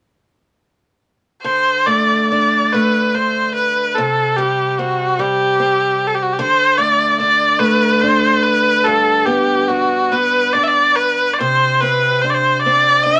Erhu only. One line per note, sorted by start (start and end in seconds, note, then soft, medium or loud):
1.43 1.88 C5 medium
1.86 2.30 D5 medium
2.31 2.74 D5 medium
2.73 3.16 B4 medium
3.14 3.55 C5 medium
3.55 3.96 B4 medium
3.95 4.38 A4 medium
4.37 4.71 G4 medium
4.71 4.80 G4 soft
4.78 5.21 F#4 medium
5.20 6.09 G4 medium
6.07 6.16 A4 soft
6.15 6.24 G4 soft
6.23 6.34 F#4 soft
6.33 6.40 G4 soft
6.41 6.79 C5 medium
6.78 7.19 D5 medium
7.20 7.61 D5 medium
7.60 8.03 B4 medium
8.01 8.44 C5 medium
8.43 8.86 B4 medium
8.84 9.27 A4 medium
9.26 9.70 G4 medium
9.68 10.13 F#4 medium
10.12 10.55 B4 medium
10.53 10.65 D5 medium
10.63 10.69 E5 soft
10.68 10.97 D5 medium
10.96 11.35 B4 medium
11.34 11.39 D5 soft
11.38 11.82 C5 medium
11.81 12.23 B4 medium
12.21 12.31 C5 medium
12.30 12.36 D5 soft
12.34 12.61 C5 medium
12.62 13.04 D5 medium
13.03 13.20 E5 medium